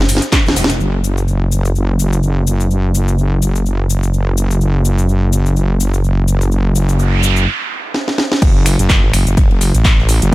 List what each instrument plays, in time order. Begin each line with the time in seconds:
Already playing: wobble bass F#1
0.01 snare
0.09 open hi-hat, ride, shaker
0.17 snare
0.22 closed hi-hat, shaker
0.33 kick, snare, clap, closed hi-hat, ride, shaker
0.46 wobble bass E1, snare, shaker
0.48 snare
0.56 snare, open hi-hat, ride, shaker
0.64 snare
0.69 snare, closed hi-hat, ride, shaker
0.80 wobble bass F#1, shaker
1.04 shaker
1.18 shaker
1.28 shaker
1.52 shaker
1.65 shaker
1.76 shaker
1.99 shaker
2.13 shaker
2.23 shaker
2.47 shaker
2.60 shaker
2.71 shaker
2.95 shaker
3.08 shaker
3.18 shaker
3.42 shaker
3.56 shaker
3.66 shaker
3.90 shaker
4.03 shaker
4.14 shaker
4.37 shaker
4.51 shaker
4.61 shaker
4.85 shaker
4.98 shaker
5.09 shaker
5.33 shaker
5.46 shaker
5.56 shaker
5.80 shaker
5.94 shaker
6.04 shaker
6.28 shaker
6.41 shaker
6.52 noise sweep, shaker
6.75 shaker
6.89 shaker
6.99 shaker
7.23 shaker
7.37 shaker
7.94 snare
8.08 snare
8.18 snare
8.32 snare
8.42 wobble bass F#1, kick, closed hi-hat, ride, crash, shaker
8.66 finger snap, open hi-hat, ride, shaker
8.79 wobble bass F#1, closed hi-hat, shaker
8.90 kick, snare, clap, closed hi-hat, ride, shaker
9.03 wobble bass G#1
9.13 wobble bass F#1, finger snap, snare, open hi-hat, ride, shaker
9.27 wobble bass F#1, closed hi-hat, shaker
9.37 kick, closed hi-hat, ride, shaker
9.51 wobble bass F#1, ride
9.61 open hi-hat, ride, shaker
9.74 wobble bass A1, closed hi-hat, shaker
9.85 kick, snare, clap, closed hi-hat, ride, shaker
9.99 snare
10.08 open hi-hat, ride, shaker
10.22 wobble bass F#1, closed hi-hat, shaker